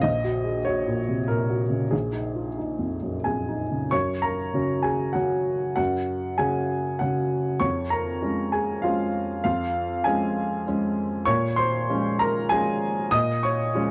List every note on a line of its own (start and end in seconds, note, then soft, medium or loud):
0.01 1.88 A#1 medium
0.01 0.64 D#5 medium
0.24 0.57 F#4 soft
0.45 0.65 G#4 soft
0.65 0.99 F#4 soft
0.65 1.27 C#5 medium
0.87 1.20 A#2 soft
1.09 1.28 C3 soft
1.28 1.63 A#2 soft
1.28 1.93 A#4 medium
1.49 1.84 F#4 soft
1.70 1.92 C#3 soft
1.91 3.88 A#1 soft
1.91 3.24 G#4 medium
2.13 2.48 D#4 soft
2.35 2.58 F4 soft
2.58 2.94 D#4 soft
2.79 3.16 F2 soft
3.02 3.26 F#2 soft
3.24 3.62 F2 soft
3.24 3.88 G#4 soft
3.24 3.91 G#5 soft
3.48 3.84 D#4 soft
3.71 3.92 C#3 soft
3.91 4.54 F#2 soft
3.91 4.22 C#5 medium
3.91 4.23 C#6 medium
4.22 4.82 A#4 soft
4.22 4.85 A#5 medium
4.54 5.12 C#3 soft
4.54 5.13 F#3 soft
4.54 5.13 C#4 soft
4.82 5.13 G#4 soft
4.82 5.15 G#5 medium
5.13 5.74 C#3 soft
5.13 5.74 F#3 soft
5.13 5.74 C#4 soft
5.13 5.73 F#4 soft
5.13 5.74 F#5 medium
5.76 6.38 F#2 soft
5.76 6.35 F#4 soft
5.76 6.39 F#5 medium
6.38 6.97 C#3 soft
6.38 6.97 F#3 soft
6.38 6.97 C#4 soft
6.38 6.97 G#4 soft
6.38 7.00 G#5 medium
6.99 7.58 C#3 soft
6.99 7.58 F#3 soft
6.99 7.59 C#4 soft
6.99 7.58 F#4 soft
6.99 7.62 F#5 medium
7.60 8.21 F2 soft
7.60 7.90 C#5 medium
7.60 7.92 C#6 medium
7.90 8.50 A#4 soft
7.90 8.53 A#5 medium
8.21 8.80 F3 soft
8.21 8.80 G#3 soft
8.21 8.80 C#4 soft
8.52 8.82 G#4 soft
8.52 8.84 G#5 medium
8.82 9.41 F3 soft
8.82 9.41 G#3 soft
8.82 9.41 C#4 soft
8.82 9.41 F4 soft
8.82 9.42 F5 medium
9.44 10.04 F2 soft
9.44 10.02 F4 medium
9.44 10.05 F5 medium
10.04 10.62 F3 soft
10.04 10.62 G#3 soft
10.04 10.63 C#4 soft
10.04 10.62 G#4 soft
10.04 10.66 G#5 medium
10.67 11.24 F3 soft
10.67 11.24 G#3 soft
10.67 11.24 C#4 soft
11.26 11.87 A#2 medium
11.26 11.56 C#5 medium
11.26 11.57 C#6 medium
11.56 12.16 C5 medium
11.56 12.19 C6 medium
11.90 12.46 F3 soft
11.90 12.47 G#3 soft
11.90 12.47 C#4 soft
12.19 12.49 A#4 medium
12.19 12.50 A#5 medium
12.49 13.08 F3 soft
12.49 13.08 G#3 soft
12.49 13.08 C#4 soft
12.49 13.08 G#4 medium
12.49 13.11 G#5 medium
13.11 13.71 A#2 medium
13.11 13.40 D#5 medium
13.11 13.42 D#6 loud
13.43 13.91 C#5 medium
13.43 13.91 C#6 medium
13.75 13.91 F3 soft
13.75 13.91 G#3 soft
13.75 13.91 C#4 soft